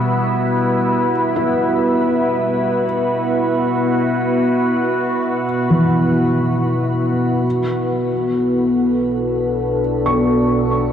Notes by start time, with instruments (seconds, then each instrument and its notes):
Already playing: ambient pad B2 G3 B3 E4 B4, felt piano E3 B5, synth drone B3 F#4
1.36 felt piano E4
1.90 ambient pad F#4
5.70 felt piano E3
7.45 sub bass B1, synth drone B3 F#4
8.05 ambient pad A4
8.98 ambient pad D4
10.06 felt piano C#6
10.50 ambient pad C#5